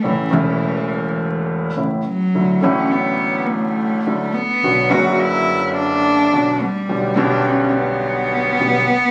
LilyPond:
<<
  \new Staff \with { instrumentName = "Cello" } { \time 4/4 \key d \major \tempo 4 = 105 e2. r8 fis8~ | fis8 cis'8 b4 a4. b8~ | b8 fis'8 e'4 d'4. g8~ | g8 d'8 cis'8 b2~ b8 | }
  \new Staff \with { instrumentName = "Grand piano" } { \clef bass \time 4/4 \key d \major <a,, a, cis e a e'>8 <e,, e, cis e a e'>2~ <e,, e, cis e a e'>8 <a,, a, cis e a e'>8 r8 | <d, d fis a e'>8 <a,, a, d fis a e'>2~ <a,, a, d fis a e'>8 <d, d fis a e'>8 r8 | <b,, b, d fis b fis'>8 <fis,, fis, d fis b fis'>2~ <fis,, fis, d fis b fis'>8 <b,, b, d fis b fis'>8 r8 | <b,, b, d g b g'>8 <b,, b, d g b g'>2~ <b,, b, d g b g'>8 <b,, b, d g b g'>8 r8 | }
  \new Staff \with { instrumentName = "Upright bass" } { \clef bass \time 4/4 \key d \major a,,8 e,,2~ e,,8 a,,8 r8 | d,8 a,,2~ a,,8 d,8 r8 | b,,8 fis,,2~ fis,,8 b,,8 r8 | b,,8 b,,2~ b,,8 b,,8 r8 | }
>>